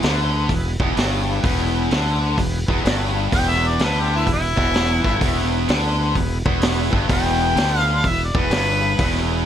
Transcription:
Already playing: tonewheel organ B3 E4 G#4 B4
0.02 fingered electric bass D2, distorted electric guitar D3, snare, open hi-hat
0.49 fingered electric bass E1, distorted electric guitar E2, kick, open hi-hat
0.80 fingered electric bass E1, distorted electric guitar E2, tonewheel organ B3 E4 G#4 D5, kick
0.97 fingered electric bass G1, distorted electric guitar G2, snare, open hi-hat
1.41 fingered electric bass E1, distorted electric guitar E2, tonewheel organ B3 E4 G#4 B4, kick, open hi-hat
1.80 tonewheel organ B3 E4 G#4 B4
1.91 fingered electric bass D2, distorted electric guitar D3, snare, open hi-hat
2.38 fingered electric bass E1, distorted electric guitar E2, kick, open hi-hat
2.66 fingered electric bass E1, distorted electric guitar E2, tonewheel organ B3 E4 G#4 B4, kick
2.85 fingered electric bass G1, distorted electric guitar G2, snare, open hi-hat
3.31 fingered electric bass E1, distorted electric guitar E2, tonewheel organ B3 E4 G#4 B4, harmonica G5, kick, open hi-hat
3.49 harmonica E5, snare
3.67 tonewheel organ B3 E4 G#4 B4, harmonica D5
3.79 fingered electric bass D2, distorted electric guitar D3, harmonica B4, snare, open hi-hat
4.00 harmonica G4
4.16 harmonica E4
4.25 fingered electric bass E1, distorted electric guitar E2, kick, open hi-hat
4.33 harmonica E4
4.55 fingered electric bass E1, distorted electric guitar E2, tonewheel organ B3 E4 G#4 B4, kick
4.59 snare
4.74 snare, open hi-hat
5.04 fingered electric bass G1, distorted electric guitar G2, kick
5.19 fingered electric bass E1, distorted electric guitar E2, tonewheel organ B3 E4 G#4, kick, open hi-hat
5.24 tonewheel organ B4
5.39 snare
5.59 tonewheel organ B3 E4 G#4 B4
5.68 fingered electric bass D2, distorted electric guitar D3, snare, open hi-hat
6.15 fingered electric bass E1, distorted electric guitar E2, kick, open hi-hat
6.45 fingered electric bass E1, distorted electric guitar E2, tonewheel organ B3 E4 G#4 B4, kick
6.61 snare, open hi-hat
6.91 fingered electric bass G1, distorted electric guitar G2, kick
7.08 fingered electric bass E1, distorted electric guitar E2, tonewheel organ B3 E4 G#4 B4, kick, open hi-hat
7.13 harmonica G5
7.26 snare
7.47 tonewheel organ B3 E4 G#4 B4
7.56 fingered electric bass D2, distorted electric guitar D3, snare, open hi-hat
7.79 harmonica F5
8.04 fingered electric bass E1, distorted electric guitar E2, harmonica E5, kick, open hi-hat
8.24 harmonica D5
8.33 fingered electric bass E1, distorted electric guitar E2, tonewheel organ B3 E4 G#4 B4, kick
8.38 harmonica B4
8.50 fingered electric bass G1, distorted electric guitar G2, snare, open hi-hat
8.96 fingered electric bass E1, distorted electric guitar E2, tonewheel organ B3 E4 G#4 B4, kick, open hi-hat
9.15 snare
9.35 tonewheel organ B3 E4 G#4 B4

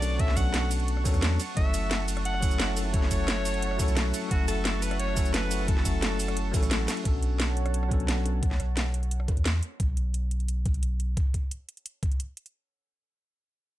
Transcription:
Already playing: sub bass B1, tine electric piano F#3 A3 B3 C#4 D4 A4, alto saxophone D5, analog synth pad F#5 A5 C#6
0.02 closed hi-hat, ride, high bongo, shaker
0.11 high bongo
0.17 tine electric piano F#3 B3 C#4 D4, alto saxophone E5, kick, closed hi-hat
0.22 tine electric piano A4
0.28 snare
0.37 sub bass B1, alto saxophone F#5, kick, cross-stick, closed hi-hat, ride, shaker
0.54 snare, closed hi-hat, high bongo
0.71 open hi-hat, ride, shaker
0.80 closed hi-hat
0.88 closed hi-hat
0.97 cross-stick
1.04 tine electric piano F#3 B3 C#4 D4 A4, kick, closed hi-hat, ride, high bongo, shaker
1.14 sub bass E2, cross-stick, closed hi-hat, shaker
1.22 snare, closed hi-hat, shaker
1.39 analog synth pad E5, closed hi-hat, ride, shaker
1.55 sub bass F#1, tine electric piano F#3 A3 C#4 E4, alto saxophone E5, kick, closed hi-hat
1.59 tine electric piano A4
1.74 closed hi-hat, ride, shaker
1.91 snare, closed hi-hat
2.08 closed hi-hat, ride, shaker
2.17 cross-stick, closed hi-hat
2.25 alto saxophone F#5, closed hi-hat
2.34 cross-stick
2.40 tine electric piano F#3 A3 C#4 E4, kick, closed hi-hat, ride, shaker
2.45 tine electric piano A4
2.51 closed hi-hat, shaker
2.60 snare, closed hi-hat, shaker
2.77 closed hi-hat, ride, high bongo, shaker
2.85 high bongo
2.92 tine electric piano F#3 A3 C#4 E4, alto saxophone C#5, kick, closed hi-hat
2.96 tine electric piano A4
3.02 snare
3.11 sub bass F#1, kick, cross-stick, closed hi-hat, ride, shaker
3.27 snare, closed hi-hat, high bongo
3.45 open hi-hat, ride, shaker
3.54 closed hi-hat
3.62 closed hi-hat
3.71 cross-stick
3.77 tine electric piano F#3 A3 C#4 E4, kick, closed hi-hat, ride, high bongo, shaker
3.82 tine electric piano A4
3.88 sub bass B1, closed hi-hat, shaker
3.97 snare, closed hi-hat, shaker
4.14 closed hi-hat, ride, shaker
4.29 sub bass F#1, tine electric piano F#3 A3 C#4 E4, alto saxophone F#4, kick, closed hi-hat
4.33 tine electric piano A4
4.48 alto saxophone A4, closed hi-hat, ride, shaker
4.65 snare, closed hi-hat
4.82 alto saxophone B4, closed hi-hat, ride, shaker
4.91 cross-stick, closed hi-hat
4.99 alto saxophone C#5, closed hi-hat
5.08 cross-stick
5.14 tine electric piano F#3 A3 C#4 E4, kick, closed hi-hat, ride, shaker
5.19 tine electric piano A4
5.25 closed hi-hat, shaker
5.34 alto saxophone B4, snare, closed hi-hat, shaker
5.51 closed hi-hat, ride, high bongo, shaker
5.60 high bongo
5.66 tine electric piano F#3 A3 C#4 E4, alto saxophone A4, kick, closed hi-hat
5.70 tine electric piano A4
5.77 snare
5.85 sub bass F#1, kick, cross-stick, closed hi-hat, ride, shaker
6.02 snare, closed hi-hat, high bongo
6.20 open hi-hat, ride, shaker
6.28 cross-stick, closed hi-hat
6.37 closed hi-hat
6.52 sub bass A1, tine electric piano F#3 A3 C#4 E4, kick, closed hi-hat, ride, high bongo, shaker
6.56 tine electric piano A4
6.63 cross-stick, closed hi-hat, shaker
6.71 snare, closed hi-hat, shaker
6.88 snare, closed hi-hat, ride, shaker
6.97 closed hi-hat
7.03 sub bass B1, tine electric piano F#3 B3 C#4 D4, analog synth pad C#5 F#5 A5, kick, closed hi-hat
7.08 tine electric piano A4
7.23 closed hi-hat
7.40 snare, closed hi-hat
7.57 closed hi-hat
7.66 cross-stick, closed hi-hat
7.74 closed hi-hat
7.83 cross-stick
7.89 tine electric piano F#3 B3 C#4 D4, kick, closed hi-hat
7.93 tine electric piano A4
8.00 closed hi-hat
8.08 snare, closed hi-hat
8.25 closed hi-hat, high bongo
8.43 kick, closed hi-hat
8.51 snare
8.60 sub bass B1, cross-stick, closed hi-hat
8.77 snare, closed hi-hat, high bongo
8.94 closed hi-hat
9.03 closed hi-hat
9.11 closed hi-hat
9.20 cross-stick
9.28 kick, closed hi-hat, high bongo
9.37 sub bass E2, closed hi-hat
9.46 snare, closed hi-hat
9.63 closed hi-hat
9.80 sub bass B1, kick, closed hi-hat
9.97 closed hi-hat
10.14 closed hi-hat
10.31 closed hi-hat
10.40 closed hi-hat
10.48 closed hi-hat
10.66 kick, closed hi-hat
10.74 closed hi-hat
10.83 closed hi-hat
11.00 closed hi-hat
11.17 kick, closed hi-hat
11.34 kick, closed hi-hat
11.51 closed hi-hat
11.69 closed hi-hat
11.77 closed hi-hat
11.86 closed hi-hat
12.03 kick, closed hi-hat
12.12 closed hi-hat
12.20 closed hi-hat
12.37 closed hi-hat
12.46 closed hi-hat

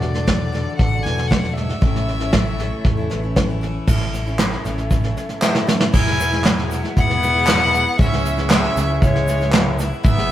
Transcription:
Already playing: picked electric bass E1, steel-string acoustic guitar E2 D3 E3 A3 D4 F#4 A4, flute section A4 D5 F#5 D6, fiddle D5
0.02 steel-string acoustic guitar F#4, snare
0.14 steel-string acoustic guitar A3 D4 F#4, snare
0.27 steel-string acoustic guitar E3 A3 D4 F#4, kick, snare
0.52 steel-string acoustic guitar D3 E3 A3 D4 F#4, snare
0.77 picked electric bass A1, steel-string acoustic guitar A4, fiddle F#5, kick, snare
0.91 steel-string acoustic guitar A3 D4 F#4
1.03 picked electric bass E1, steel-string acoustic guitar E2 E3 A3 D4, fiddle G#5, snare
1.07 steel-string acoustic guitar F#4
1.17 steel-string acoustic guitar A3 D4 F#4, snare
1.27 steel-string acoustic guitar E3 A3 D4, fiddle F#5, kick
1.31 steel-string acoustic guitar F#2 F#4, snare
1.42 steel-string acoustic guitar A3 D4 F#4, snare
1.53 steel-string acoustic guitar E3 A3, fiddle E5, snare
1.57 steel-string acoustic guitar G#2 D4 F#4
1.69 snare
1.81 picked electric bass A1, steel-string acoustic guitar A2 E3 A3 C#4 E4, flute section A4 C#5 E5 C#6, kick, snare
1.96 snare
2.08 steel-string acoustic guitar E4, snare
2.19 steel-string acoustic guitar A3 C#4 E4, snare
2.32 steel-string acoustic guitar A2 E3 A3 C#4 E4, kick, snare
2.58 steel-string acoustic guitar E3 A3 C#4 E4, snare
2.84 picked electric bass E2, steel-string acoustic guitar A4, kick, snare
2.97 steel-string acoustic guitar A3 C#4 E4
3.10 picked electric bass A1, steel-string acoustic guitar E2 E3 A3 C#4 E4, snare
3.22 steel-string acoustic guitar A3 C#4 E4
3.36 steel-string acoustic guitar A2 E3 A3 C#4 E4, kick, snare
3.48 steel-string acoustic guitar A3 C#4 E4
3.61 steel-string acoustic guitar E3 A3 C#4 E4, snare
3.86 picked electric bass A1, steel-string acoustic guitar A2 E3 A3 C#4 E4, flute section C#4 E4 A4 E5, kick, snare, crash, shaker
4.00 steel-string acoustic guitar A3 C#4 E4, snare
4.14 snare, shaker
4.26 steel-string acoustic guitar A3 C#4 E4, shaker
4.39 steel-string acoustic guitar A2 E3 A3 C#4 E4, snare, clap, shaker
4.51 steel-string acoustic guitar A3 C#4 E4, snare
4.64 picked electric bass A1, steel-string acoustic guitar E3 A3 C#4 E4, snare, shaker
4.78 snare, shaker
4.90 picked electric bass A1, kick, snare, shaker
5.02 steel-string acoustic guitar A3 C#4 E4, snare
5.17 snare, shaker
5.29 snare, shaker
5.41 steel-string acoustic guitar A2 E3 A3 C#4 E4, snare, clap, shaker
5.55 snare, shaker
5.67 steel-string acoustic guitar E3 A3 C#4 E4, snare, shaker
5.79 steel-string acoustic guitar A3 C#4 E4, snare
5.92 picked electric bass E1, steel-string acoustic guitar E2 B2 F#3 G#3 B3 E4, flute section E4 G#4 B4 F#5, trumpet E4, fiddle G#5, kick, snare, crash, shaker
6.06 steel-string acoustic guitar F#3 G#3 B3 E4, snare
6.20 snare, shaker
6.31 steel-string acoustic guitar F#3 G#3 B3 E4, snare
6.44 steel-string acoustic guitar E2 B2 F#3 G#3 B3 E4, snare, clap, shaker
6.57 steel-string acoustic guitar F#3 G#3 B3 E4, snare
6.70 steel-string acoustic guitar F#3 G#3 B3 E4, snare, shaker
6.83 steel-string acoustic guitar F#3 G#3 B3 E4, snare
6.97 picked electric bass E1, trumpet B3, fiddle F#5, kick, snare, shaker
7.08 steel-string acoustic guitar F#3 G#3 B3 E4, snare
7.20 steel-string acoustic guitar F#3 G#3 B3 E4, snare, shaker
7.33 steel-string acoustic guitar F#3 G#3 B3 E4, shaker
7.46 steel-string acoustic guitar E2 B2 F#3 G#3 B3 E4, snare, clap, shaker
7.72 steel-string acoustic guitar F#3 G#3 B3 E4, snare, shaker
7.88 shaker
7.98 picked electric bass C#2, steel-string acoustic guitar C#3 E3 G#3 B3 E4, flute section C#4 E5, trumpet C#4, fiddle E5, kick, snare, shaker
8.11 steel-string acoustic guitar G#3 B3 E4, snare
8.25 snare, shaker
8.36 steel-string acoustic guitar G#3 B3 E4, snare
8.49 steel-string acoustic guitar C#3 E3 G#3 B3 E4, trumpet C#4, fiddle E5, snare, clap, shaker
8.62 steel-string acoustic guitar G#3 B3 E4, snare
8.75 picked electric bass C#2, steel-string acoustic guitar E3 G#3 B3 E4, snare, shaker
8.88 steel-string acoustic guitar G#3 B3 E4
9.02 picked electric bass C#2, trumpet G#3, fiddle C#5, kick, snare, shaker
9.13 steel-string acoustic guitar G#3 B3 E4, snare
9.26 steel-string acoustic guitar E3 G#3 B3 E4, snare, shaker
9.39 steel-string acoustic guitar G#3 B3 E4, snare, shaker
9.52 steel-string acoustic guitar C#3 E3 G#3 B3 E4, snare, clap, shaker
9.79 steel-string acoustic guitar E3 G#3 B3 E4, snare, shaker
9.92 shaker
10.03 picked electric bass G#1, steel-string acoustic guitar G#2 E3 F#3 B3 E4 G#4, trumpet B3, flute section E4 F#5, fiddle E5, kick, snare, shaker
10.17 steel-string acoustic guitar F#3 B3 E4 G#4, snare

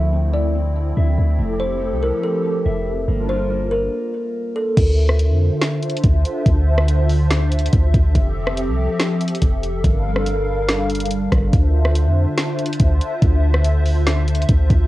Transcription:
Already playing: 808-style bass D2, analog synth pad D3 F3 A3 C4 E4, clean electric guitar C4 E4 E5, kalimba E5
0.12 clean electric guitar C4
0.33 clean electric guitar E4, kalimba D5
0.55 clean electric guitar C4
0.97 808-style bass D2, clean electric guitar E5
1.18 808-style bass D2
1.39 808-style bass F1, analog synth pad F3 G4 A4, clean electric guitar A3
1.60 clean electric guitar E4, kalimba C5
1.81 clean electric guitar A3
1.92 808-style bass C2
2.03 clean electric guitar E4, kalimba A#4
2.24 clean electric guitar A3, kalimba A4
2.66 808-style bass F1, clean electric guitar E5
3.08 808-style bass G1, analog synth pad G3 D4 F4 A#4, clean electric guitar A#3
3.29 clean electric guitar F4, kalimba C5
3.50 clean electric guitar A#3
3.71 clean electric guitar F4, kalimba A#4
4.56 kalimba A4
4.77 808-style bass D2, analog synth pad D3 D4 F4 C5 E5, kick, closed hi-hat, crash
5.09 cross-stick
5.19 closed hi-hat
5.30 808-style bass F2
5.62 snare, closed hi-hat
5.83 closed hi-hat
5.90 closed hi-hat
5.97 closed hi-hat
6.04 808-style bass D2, kick, closed hi-hat
6.25 closed hi-hat
6.46 808-style bass D2, kick, closed hi-hat
6.78 cross-stick
6.88 closed hi-hat
7.09 open hi-hat
7.31 snare, closed hi-hat
7.52 closed hi-hat
7.59 closed hi-hat
7.66 closed hi-hat
7.73 808-style bass D2, kick, closed hi-hat
7.94 808-style bass D2, kick, closed hi-hat
8.15 808-style bass F1, analog synth pad F3 C4 G4 A4, kick, closed hi-hat
8.47 cross-stick
8.57 closed hi-hat
8.68 808-style bass C2
9.00 snare, closed hi-hat
9.21 closed hi-hat
9.28 closed hi-hat
9.35 closed hi-hat
9.42 808-style bass F1, kick, closed hi-hat
9.63 closed hi-hat
9.84 808-style bass G1, analog synth pad G3 D4 A#4 F5, kick, closed hi-hat
10.16 cross-stick
10.26 closed hi-hat
10.69 snare, closed hi-hat
10.90 closed hi-hat
10.95 closed hi-hat
11.00 closed hi-hat
11.06 closed hi-hat
11.11 closed hi-hat
11.32 808-style bass G1, kick, cross-stick, closed hi-hat
11.53 808-style bass D2, analog synth pad D3 F4 C5 E5, kick, closed hi-hat
11.85 cross-stick
11.95 closed hi-hat
12.06 808-style bass F2
12.38 snare, closed hi-hat
12.59 closed hi-hat
12.66 closed hi-hat
12.73 closed hi-hat
12.80 808-style bass D2, kick, closed hi-hat
13.01 closed hi-hat
13.22 808-style bass D2, kick, closed hi-hat
13.54 cross-stick
13.64 closed hi-hat
13.86 open hi-hat
14.07 snare, closed hi-hat
14.28 closed hi-hat
14.35 closed hi-hat
14.42 closed hi-hat
14.49 808-style bass D2, kick, closed hi-hat
14.70 808-style bass D2, kick, closed hi-hat

